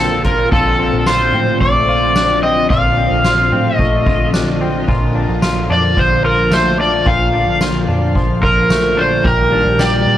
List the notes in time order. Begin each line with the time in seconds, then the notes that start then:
Already playing: A#1 A#2 D3 A#3 C4 F4 A4
0.24 F4 A#4, kick, closed hi-hat
0.51 A#1 A#2 D3 F3 C4 F4 A4, kick, crash
0.79 C4
0.93 A#1
1.06 F4 C5, snare, ride, tambourine
1.34 A2 C4
1.61 A#1 A3 D5, kick, ride
1.88 F4
2.16 D4, snare, ride, tambourine
2.43 C4 D#5
2.70 A#1 A#2 F4 F5, kick, ride
2.97 C4
3.11 A#1
3.24 F4, snare, tambourine
3.52 A2 C4
3.76 A#1 A3 D#5, kick
4.06 F4, kick
4.34 D4, snare, ride, tambourine
4.61 C4
4.88 A#1 A#2 F4, kick, ride
5.15 D4
5.29 A#1
5.42 F4, snare, ride, tambourine
5.70 F2 D4 D5
5.97 A#1 F3 C5, kick, ride
6.24 F4 A#4
6.52 A3 C5, snare, ride, tambourine
6.79 D4 D5
7.06 A#1 A#2 F4 F5, kick, ride
7.34 D4
7.48 A#1
7.61 F4, snare, ride, tambourine
7.88 F2 D4
8.15 A#1 F3, kick, ride
8.43 F4 A#4, kick
8.70 A3, snare, ride, tambourine
8.97 D4 C5
9.24 A#1 A#2 D#3 G3 A#3 G4 A#4, kick, ride
9.52 D4
9.65 A#1
9.79 G4 D5, snare, ride, tambourine
10.06 A#2